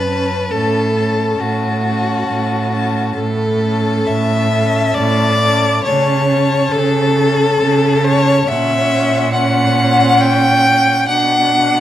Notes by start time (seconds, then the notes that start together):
Already playing: F#2 B4
0.08 C#4 A5
0.51 A2 C#4 A4 A5
0.96 C#4 A5
1.39 A2 F#4
1.84 C#4 A5
2.28 A2
2.72 C#4 A5
3.15 A2 A4
3.62 C#4 A5
4.07 A2 E5
4.52 C#4 A5
4.95 A2 D5
5.41 C#4 A5
5.84 C#3 C#4 C#5 A5
6.30 C#4 A5
6.71 C#3 A4
7.17 C#4 A5
7.60 C#3
8.05 C#4 C#5 A5
8.48 A#2 C#4 E5 F#5
9.33 C#4 F#5
10.22 G5
11.09 B2 D4 F#5